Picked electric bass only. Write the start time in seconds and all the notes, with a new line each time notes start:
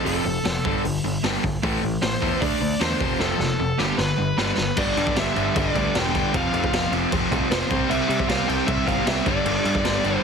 0.06 F1
0.26 F1
0.45 F1
0.65 G1
0.85 G1
1.05 G1
1.24 G1
1.44 G1
1.63 A1
1.83 A1
2.03 A1
2.22 E2
2.42 D2
2.61 D2
2.81 E2
3.00 F1
3.19 F1
3.39 F1
3.59 F1
3.78 G1
3.98 G1
4.18 G1
4.38 G1
4.57 G1
4.77 G1
4.97 G2
5.16 G1
5.36 G1
5.56 G1
5.76 D2
5.94 E1
6.34 F1
6.53 F2
6.73 F1
6.92 F1
7.12 F1
7.32 C2
7.50 F1
7.71 C2
7.89 C2
8.09 C3
8.29 C2
8.48 C2
8.68 C2
8.87 G1
9.07 C2
9.26 G1
9.46 G1
9.65 G2
9.85 G1
10.04 G1